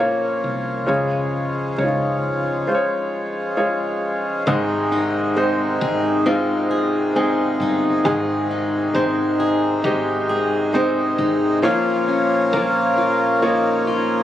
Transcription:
Already playing: fretless electric bass A#1, harmonium F3 A#3 C#4 F4, upright piano A#3
0.00 upright piano F4 C#5
0.44 fretless electric bass C2
0.86 fretless electric bass C#2, upright piano C#3 G#3 F4 C#5, harmonium G#3
1.78 fretless electric bass C#2, upright piano G#3 D#4 C#5
1.84 upright piano F4
2.67 upright piano G#3 F4 C5
2.75 upright piano C#5
3.57 upright piano G#3 F4 C#5
4.47 fretless electric bass G#1, steel-string acoustic guitar G#2 G#4, upright piano G#2 D#3 G#3 D#4 C5, harmonium C3 D#3 G#3 D#4
4.92 steel-string acoustic guitar D#4
5.36 upright piano G#3 D#4 C5, steel-string acoustic guitar C4
5.81 fretless electric bass G#1, steel-string acoustic guitar G#4
6.26 upright piano G#3 D#4 F4, steel-string acoustic guitar C4
6.71 steel-string acoustic guitar G#4
7.16 upright piano G#3 D#4 G#4, steel-string acoustic guitar C4
7.60 fretless electric bass G1, steel-string acoustic guitar D#4
8.05 fretless electric bass G#1, upright piano G#2 D#3 G#3 D#4 G#4, steel-string acoustic guitar G#2 G#4
8.51 steel-string acoustic guitar D#4
8.94 fretless electric bass G#1, upright piano G#3 D#4 C5, steel-string acoustic guitar C4
9.40 steel-string acoustic guitar G#4
9.84 fretless electric bass G#1, upright piano G#3 D#4 G4, steel-string acoustic guitar C4
10.29 steel-string acoustic guitar G#4
10.73 upright piano G#3 D#4 C5, steel-string acoustic guitar C4
11.18 fretless electric bass G#1, steel-string acoustic guitar D#4
11.62 fretless electric bass A#1, upright piano A#2 F3 A#3 F4 C#5, steel-string acoustic guitar A#2 F4, harmonium F3 A#3 C#4 F4
12.08 steel-string acoustic guitar C#4
12.53 fretless electric bass A#1, upright piano A#3 F4 A#4, steel-string acoustic guitar A#3
12.98 steel-string acoustic guitar F4
13.42 upright piano A#3 F4 C#5, steel-string acoustic guitar A#3, harmonium D#4
13.87 steel-string acoustic guitar F4

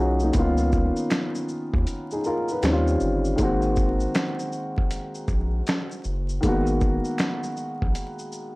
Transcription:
Already playing: analog synth bass B1, upright piano D#4 F4 F#4 G#4 A#4
0.00 upright piano C#4
0.20 upright piano A#3 D#4, shaker
0.32 analog synth bass C#2, upright piano D#3 A#3 B3, kick, closed hi-hat, shaker
0.37 upright piano C#4 F4
0.57 shaker
0.72 kick, shaker
0.96 shaker
1.10 finger snap, snare, closed hi-hat, shaker
1.12 finger snap
1.35 shaker
1.49 shaker
1.74 analog synth bass D#2, kick
1.87 closed hi-hat, shaker
2.11 upright piano D#4 G#4, shaker
2.24 upright piano F4 A#4, shaker
2.48 upright piano F4 B4, shaker
2.62 analog synth bass D#2, upright piano D#3 G3 C4 C#4, finger snap, snare, closed hi-hat, shaker
2.65 upright piano D#4, finger snap
2.73 upright piano F4
2.87 shaker
3.00 analog synth bass G1, shaker
3.25 shaker
3.36 analog synth bass G#1, upright piano D#3 G#3 A#3, kick, closed hi-hat, shaker
3.41 upright piano C4 F#4
3.62 shaker
3.76 kick, shaker
4.00 shaker
4.15 finger snap, snare, closed hi-hat, shaker
4.39 shaker
4.52 shaker
4.78 kick
4.91 closed hi-hat, shaker
5.15 shaker
5.28 analog synth bass A#1, kick, shaker
5.67 finger snap, snare, closed hi-hat, shaker
5.69 finger snap
5.91 shaker
6.04 analog synth bass F#1, shaker
6.29 shaker
6.41 analog synth bass G#1, upright piano D#3 G#3 A#3, kick, closed hi-hat, shaker
6.46 upright piano B3 F#4
6.67 shaker
6.81 kick, shaker
7.05 shaker
7.18 finger snap, snare, closed hi-hat, shaker
7.21 finger snap
7.43 shaker
7.57 shaker
7.82 analog synth bass A#1, kick
7.95 closed hi-hat, shaker
8.19 shaker
8.32 shaker

